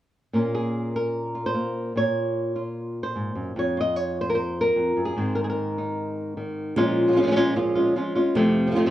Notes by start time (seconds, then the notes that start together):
0.33 A#2 A#3 C#4 F4 A#4
0.55 G#4
0.96 A#4
1.35 F4
1.46 C5
1.54 A#3
1.96 A#2 C#5
2.56 F4
3.03 C5
3.16 G#2
3.35 F#2
3.56 F2 C#5
3.77 F4 D#5
3.96 C#5
4.21 C5
4.30 A#4
4.35 C5
4.61 A#4
4.76 F2
4.97 F#2
5.05 G#4
5.17 G#2 D#3 C4
5.35 A#4
5.44 G#4
5.50 A#4
5.78 D#4
6.37 D#3
6.76 A#2 F3 G#3 C#4 F4, muted nylon-string guitar stroke
7.07 F3 G#3 C#4 F4
7.12 F3 G#3 C#4 F4
7.16 A#2 F3 G#3 C#4 F4
7.23 F3 G#3 C#4 F4
7.27 F3 G#3 C#4 F4
7.31 F3 G#3 C#4 F4
7.36 A#2 F3 G#3 C#4 F4
7.55 A#2 F3 G#3 C#4 F4, muted nylon-string guitar stroke
7.75 G#3 C#4 F4
7.95 F3 G#3 C#4 F4, muted nylon-string guitar stroke
8.16 G#3 C#4 F4
8.35 F2 C3 F3 A3 C4 F4, muted nylon-string guitar stroke
8.67 C3 F3 A3 C4 F4
8.71 C3 F3 A3 C4 F4
8.75 F2 C3 F3 A3 C4 F4
8.86 C3 F3 A3 C4 F4